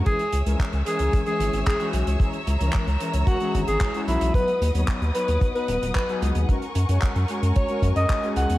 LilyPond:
<<
  \new Staff \with { instrumentName = "String section" } { \time 4/4 \key cis \dorian \tempo 4 = 112 << { <cis'' e'' e'''>1~ | <cis'' e'' e'''>1 | <b' dis'' dis'''>1 | <ais' cis'''>1 | } \\ { gis''1 | ais''1 | fis''1 | gis''1 | } >> }
  \new Staff \with { instrumentName = "Alto saxophone" } { \time 4/4 \key cis \dorian gis'8. r8. gis'8. gis'8. gis'8 r8 | r2 fis'8. gis'8. e'8 | b'8. r8. b'8. b'8. b'8 r8 | r2 cis''8. dis''8. fis''8 | }
  \new Staff \with { instrumentName = "Analog polysynth" } { \time 4/4 \key cis \dorian <e gis cis' gis'>16 r8 <e gis cis' ais'>8 r16 <e gis cis' ais'>8. <e gis cis' gis'>4 <e gis cis' fis'>8. | <e gis cis' gis'>16 r8 <e gis cis' ais'>8 r16 <e gis cis' ais'>8. <e gis cis' gis'>4 <e gis cis' fis'>8. | <fis b dis' b'>16 r8 <fis b dis' cis''>8 r16 <fis b dis' cis''>8. <fis b dis' b'>4 <fis b dis' gis'>8. | <gis cis' fis' ais'>16 r8 <gis cis' fis' cis''>8 r16 <gis cis' fis' cis''>8. <gis cis' fis' ais'>4 <gis cis' fis' gis'>8. | }
  \new Staff \with { instrumentName = "Analog synth bass" } { \clef bass \time 4/4 \key cis \dorian r8 cis,16 cis,16 r16 cis,16 r16 cis,16 r8 gis,,16 gis,,16 r8 b,,16 cis,16 | r8 cis,16 cis,16 r16 cis,16 r16 cis,16 r8 gis,,16 gis,,16 r8 b,,16 b,,16 | r8 dis,16 dis,16 r16 dis,16 r16 dis,16 r8 dis,,16 dis,,16 r8 cis,16 dis,16 | r8 fis,16 fis,16 r16 fis,16 r16 fis,16 r8 fis,16 fis,16 r8 cis,16 e,16 | }
  \new DrumStaff \with { instrumentName = "Drums" } \drummode { \time 4/4 <hh bd>16 hh16 hh16 hh16 <hc hh bd>16 hh16 hh16 hh16 <hh bd>16 hh16 hh16 hh16 <hc hh bd>16 hh16 hh16 hh16 | <hh bd>16 hh16 hh16 hh16 <hc hh bd>16 hh16 hh16 hh16 <hh bd>16 hh16 <hh bd>16 hh16 <hc hh bd>16 hh16 hh16 hh16 | <hh bd>16 hh16 hh16 hh16 <hc hh bd>16 hh16 hh16 hh16 <hh bd>16 hh16 hh16 hh16 <hc hh bd>16 hh16 hh16 hh16 | <hh bd>16 hh16 hh16 hh16 <hc hh bd>16 hh16 hh16 hh16 <hh bd>16 hh16 <hh bd>16 hh16 <hc hh bd>16 hh16 hh16 hh16 | }
>>